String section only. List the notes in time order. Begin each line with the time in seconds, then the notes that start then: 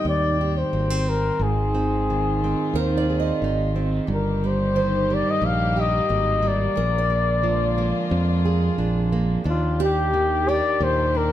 Already playing: D#3 C4 G5
1.37 F4
4.08 G3 A#3 G4
6.76 D3 G#3 F4
9.46 D#3 A#3 D4 G4